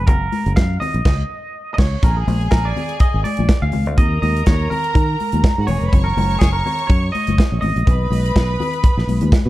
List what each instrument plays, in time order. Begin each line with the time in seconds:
0.07 fingered electric bass F#1, clean electric guitar A#4, kick, closed hi-hat, low conga
0.32 open hi-hat, muted conga, high conga
0.46 fingered electric bass F#1, closed hi-hat
0.56 fingered electric bass F#2, clean electric guitar F5, kick, snare, closed hi-hat
0.80 clean electric guitar D#5, open hi-hat, muted conga, low conga
0.94 fingered electric bass A#1, closed hi-hat
1.05 fingered electric bass C#2, kick, snare, crash
1.74 clean electric guitar D#5
1.78 fingered electric bass C#2, clean electric guitar C#5, kick, snare, crash
2.03 fingered electric bass A#1, string section G#4 G#5, clean electric guitar A#4, kick, closed hi-hat, low conga
2.16 clean electric guitar G#4
2.27 fingered electric bass A#1, open hi-hat, muted conga, high conga
2.41 closed hi-hat
2.51 fingered electric bass A#1, clean electric guitar A#4, kick, snare, closed hi-hat
2.65 clean electric guitar D5
2.76 open hi-hat, muted conga, low conga
2.89 closed hi-hat
3.00 clean electric guitar D#5, kick, closed hi-hat
3.14 fingered electric bass G#1
3.24 clean electric guitar D5, open hi-hat, muted conga, high conga
3.37 fingered electric bass A#1, closed hi-hat, high conga
3.49 kick, snare, closed hi-hat
3.62 fingered electric bass D2, clean electric guitar F5
3.72 fingered electric bass C#2, open hi-hat, muted conga, high conga, low conga
3.86 fingered electric bass D2, closed hi-hat
3.98 fingered electric bass D#2, string section A#4 A#5, clean electric guitar D#5, kick, closed hi-hat, low conga
4.22 fingered electric bass D#2, clean electric guitar D#5, open hi-hat, high conga
4.37 closed hi-hat
4.46 fingered electric bass D#2, clean electric guitar C#5, kick, snare, closed hi-hat
4.70 clean electric guitar A#4, open hi-hat, muted conga, low conga
4.84 closed hi-hat
4.94 fingered electric bass D#3, clean electric guitar A#4, kick, closed hi-hat, muted conga
5.20 open hi-hat, high conga
5.32 fingered electric bass D#2, closed hi-hat, high conga
5.44 kick, snare, closed hi-hat, muted conga
5.58 fingered electric bass G#2, string section F#4 F#5
5.67 fingered electric bass E1, string section G#4 G#5, clean electric guitar C#5, open hi-hat, high conga, low conga
5.77 string section A#4 A#5
5.81 fingered electric bass F1, closed hi-hat
5.86 string section B4 B5
5.93 fingered electric bass F#1, string section C#5 C#6, kick, closed hi-hat, low conga
6.04 clean electric guitar A#4
6.17 fingered electric bass F#1, open hi-hat, muted conga, high conga
6.31 closed hi-hat
6.39 fingered electric bass F#1, clean electric guitar G#4, kick, snare, closed hi-hat
6.53 clean electric guitar A#4
6.66 open hi-hat, muted conga, low conga
6.79 closed hi-hat
6.87 fingered electric bass F#2, clean electric guitar C#5, kick, closed hi-hat
7.12 clean electric guitar D#5, open hi-hat, muted conga, high conga
7.27 fingered electric bass F#1, closed hi-hat, high conga
7.38 kick, snare, closed hi-hat
7.52 fingered electric bass A#1
7.61 fingered electric bass A1, clean electric guitar D#5, open hi-hat, muted conga, high conga, low conga
7.76 fingered electric bass A#1, closed hi-hat
7.87 fingered electric bass B1, string section B4 B5, kick, closed hi-hat, muted conga, low conga
8.10 fingered electric bass B1, open hi-hat, high conga
8.26 closed hi-hat
8.36 fingered electric bass B1, kick, snare, closed hi-hat
8.60 open hi-hat, muted conga, low conga
8.73 closed hi-hat
8.83 kick, closed hi-hat, muted conga
8.97 fingered electric bass A#1, snare
9.07 fingered electric bass B1, open hi-hat, muted conga, high conga
9.21 fingered electric bass D#2, closed hi-hat, high conga
9.32 kick, snare, closed hi-hat
9.46 fingered electric bass B2